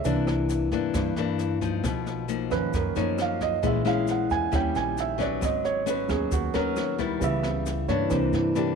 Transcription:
Already playing: E5
0.04 C2 C3 E3 A#3 D4, kick, snare, shaker
0.27 cross-stick, snare, shaker
0.49 snare, shaker
0.72 G2 E3 A#3 D4, kick, snare, shaker
0.94 G2 E3 A#3 D4, kick, cross-stick, snare, shaker
1.16 G2 E3 A#3 D4, snare, shaker
1.39 snare, shaker
1.61 F3 A#3 D#4, kick, snare, shaker
1.83 B1 B2, kick, cross-stick, snare, shaker
2.06 snare, shaker
2.28 F3 A#3 D#4, snare, shaker
2.50 F#2 D#3 F3 A#3 C#4 B4, kick, cross-stick, snare, shaker
2.73 F#2 A#4, kick, snare, shaker
2.96 F#2 F3 A#3 D#4 C#5, snare, shaker
3.18 F5, cross-stick, snare, shaker
3.41 D#5, kick, snare, shaker
3.63 A#1 A#2 E3 G#3 C#4 E4, kick, snare, shaker
3.67 E5
3.85 G#3 C#4 E4 F5, cross-stick, snare, shaker
4.07 F#5, snare, shaker
4.30 E2 G#5, kick, snare, shaker
4.52 D#2 D#3 G3 C#4 E4 G5, kick, cross-stick, snare, shaker
4.75 A#1 G#5, snare, shaker
4.97 E5, snare, shaker
5.18 F#3 B3 C#4 D5, kick, snare, shaker
5.41 G#1 G#2 D#5, kick, cross-stick, snare, shaker
5.65 C#5, snare, shaker
5.86 F#3 B3 C#4 B4, snare, shaker
6.08 D#2 F#3 B3 C#4 G#4, kick, cross-stick, snare, shaker
6.31 D#2 D#3 F#4, kick, snare, shaker
6.54 D#2 F#3 B3 C#4 A#4, snare, shaker
6.76 cross-stick, snare, shaker
6.98 G3 B3 E4, kick, snare, shaker
7.20 C#2 C#3 E3 G3 B3, kick, snare, shaker
7.24 E5
7.43 cross-stick, snare, shaker
7.66 snare, shaker
7.88 G2 E3 A#3 D4 C#5, kick, snare, shaker
8.10 C2 C3 E3 A#3 D4 C5, kick, cross-stick, snare, shaker
8.33 G2 E4, snare, shaker
8.55 E3 A#3 D4 G4, snare, shaker

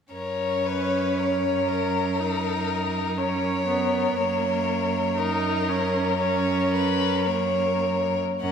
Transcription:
0.13 F#2 C#4 A#4 C#5
0.66 B4
1.18 A#4 C#5
1.68 A#4
2.19 D#4 A#4
3.18 C#4 A#4 C#5
3.67 B3
4.16 F#2 A#3 C#5
5.18 D#4 A#4
5.70 C#4
6.20 C#4 A#4 C#5
6.74 B4
7.27 A#3 A#4 C#5
8.41 F#2 C#4 A#4 F#5

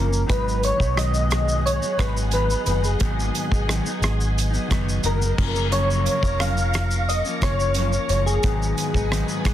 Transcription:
Already playing: F#1 C#3 A#4
0.07 F3 A#3 C#4
0.13 shaker
0.26 G#1 G#2 D#3 F#3 B3 D#4 B4, kick, closed hi-hat, shaker
0.31 G#4 D#5 F#5 G#5
0.48 shaker
0.63 C#5, closed hi-hat, shaker
0.77 B1 F#3 B3 D#4, kick
0.81 shaker
0.95 G#2 D#3 F#3 B3 D#4 D#5, cross-stick, closed hi-hat, shaker
1.14 shaker
1.31 cross-stick, closed hi-hat, shaker
1.49 shaker
1.66 C#5, closed hi-hat, shaker
1.80 F#3 B3 D#4, shaker
1.97 G#1 D#3 F#3 B3 D#4 B4, kick, cross-stick, closed hi-hat, shaker
2.17 shaker
2.32 G#2 D#3 F#3 B3 D#4 B4, closed hi-hat, shaker
2.48 F#3 B3 D#4, shaker
2.65 F#1 D#3 F#3 B3 D#4 B4, closed hi-hat, shaker
2.83 F#3 B3 D#4 G#4, shaker
2.98 G#1 G#2 D#3 F#3 B3 D#4, kick, closed hi-hat, shaker
3.20 shaker
3.35 closed hi-hat, shaker
3.49 G#1 B3 D#4, kick, shaker
3.54 F#3
3.67 G#2 D#3 F#3 B3 D#4, cross-stick, closed hi-hat, shaker
3.84 F#3 B3 D#4, shaker
4.01 G#1, cross-stick, closed hi-hat, shaker
4.21 shaker
4.38 closed hi-hat, shaker
4.51 F#3 B3 D#4, shaker
4.68 F#1 D#3 F#3 B3 D#4, kick, closed hi-hat, shaker
4.72 cross-stick
4.89 shaker
5.03 F#1 G#2 D#3 F#3 B3 D#4 A#4, closed hi-hat, shaker
5.20 F#3 B3 D#4, shaker
5.36 F#1 C#3 F3 A#3 C#4 A#4 F5 A#5 C#6, kick, crash
5.53 F3 A#3 C#4, shaker
5.70 F#2 C#3 F3 A#3 C#4 C#5, closed hi-hat, shaker
5.91 shaker
6.06 closed hi-hat, shaker
6.21 F1 F3 A#3 C#4, kick, shaker
6.38 F#2 C#3 F3 A#3 C#4 F5, cross-stick, closed hi-hat, shaker
6.56 F3 A#3 C#4, shaker
6.74 cross-stick, closed hi-hat, shaker
6.91 shaker
7.09 D#5, closed hi-hat, shaker
7.25 F3 A#3 C#4, shaker
7.42 F#1 C#3 F3 A#3 C#4 C#5, kick, cross-stick, closed hi-hat, shaker
7.60 shaker
7.75 F#2 C#3 F3 A#3 C#4, closed hi-hat, shaker
7.92 F3 A#3 C#4, shaker
8.09 F#1 C#3 F3 A#3 C#4 C#5, closed hi-hat, shaker
8.25 F3 A#3 C#4 G#4, shaker
8.43 G#1 G#2 D#3 F#3 B3 D#4 B4 F#5 G#5 D#6, kick, closed hi-hat, shaker
8.62 shaker
8.78 closed hi-hat, shaker
8.93 G#1 F#3 B3 D#4, kick, shaker
9.10 G#2 D#3 F#3 B3 D#4, cross-stick, closed hi-hat, shaker
9.28 shaker
9.45 G#1, kick, cross-stick, closed hi-hat, shaker

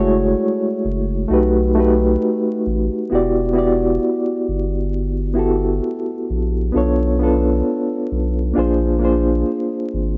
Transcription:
Already playing: F#1 G#3 A3 E4 F#4 G#4 A4 C#5 D5
0.85 F#1
1.28 B1 A3 D#4 F#4
1.32 G4 B4
1.75 A3 D#4 F#4
1.79 G4 B4
2.66 A1
3.10 E1 B3 E4 F#4 G4
3.15 D5
3.53 B3 E4 F#4
3.57 G4 D5
4.48 G1
5.33 B3 E4 F#4 G4
5.39 A4
6.30 A#1
6.72 B1 B3 D4 F4 A4
6.77 C#5
7.19 B3 D4 F4
7.23 A4 B4
8.12 B1
8.54 A#1 A#3 D4 F4
8.58 G#4 C5
8.99 A#3 D4 F4
9.03 G#4 C5
9.94 G#1

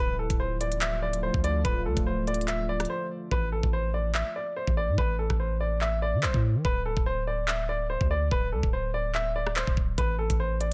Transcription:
0.00 D1 D3 F3 A3 F4 B4
0.19 A4
0.30 D1, kick, closed hi-hat
0.40 C5
0.61 D5, closed hi-hat
0.72 closed hi-hat
0.81 E5, clap, closed hi-hat
1.02 D5
1.13 closed hi-hat
1.23 C5
1.34 D2, kick
1.44 D5, closed hi-hat
1.65 D1 B4, kick, closed hi-hat
1.86 D2 A4
1.97 D1, kick, closed hi-hat
2.07 C5
2.27 D5, closed hi-hat
2.34 closed hi-hat
2.41 closed hi-hat
2.48 E5, clap, closed hi-hat
2.69 D5
2.80 cross-stick, closed hi-hat
2.85 closed hi-hat
2.90 C5
3.31 A1 B4, kick
3.52 A4
3.63 A1, kick
3.73 C5
3.94 D5
4.15 E5, clap
4.36 D5
4.56 C5
4.67 A1, kick
4.77 D5
4.88 A2
4.98 A1 B4, kick
5.19 A4
5.30 A1, kick, cross-stick
5.40 C5
5.60 D5
5.81 E5, clap
6.02 D5
6.13 E3
6.23 A1 C5, clap
6.34 A2, kick
6.55 E3
6.65 D1 B4, kick
6.86 A4
6.97 D1, kick
7.06 C5
7.27 D5
7.48 E5, clap
7.69 D5
7.90 C5
8.01 D2, kick
8.11 D5
8.31 D1 B4, kick
8.52 D2 A4
8.63 D1, kick
8.73 C5
8.94 D5
9.15 E5, clap
9.36 D5
9.47 cross-stick
9.56 C5, clap
9.67 D1, kick
9.77 D1, kick
9.98 A1 B4, kick, closed hi-hat
10.19 A4
10.30 A1, kick, closed hi-hat
10.40 C5
10.61 D5, closed hi-hat

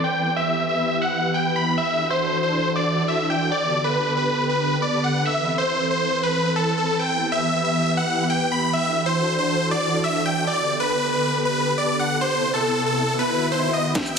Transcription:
0.04 G5
0.36 E5
0.69 E5
1.02 F#5
1.34 G5
1.56 B5
1.78 E5
2.10 C5
2.43 C5
2.76 D5
3.08 E5
3.30 G5
3.52 D5
3.84 B4
4.17 B4
4.49 B4
4.82 D5
5.04 F#5
5.25 E5
5.58 C5
5.91 C5
6.23 B4
6.56 A4
6.78 A4
6.99 G5
7.32 E5
7.65 E5
7.97 F#5
8.30 G5
8.52 B5
8.73 E5
9.06 C5
9.39 C5
9.71 D5
10.04 E5
10.26 G5
10.47 D5
10.80 B4
11.13 B4
11.45 B4
11.78 D5
11.99 F#5
12.21 C5
12.54 A4
12.86 A4
13.08 swell
13.19 B4
13.52 C5
13.73 D#5
13.95 E5 G5, kick, snare, closed hi-hat, riser, shaker
14.06 shaker

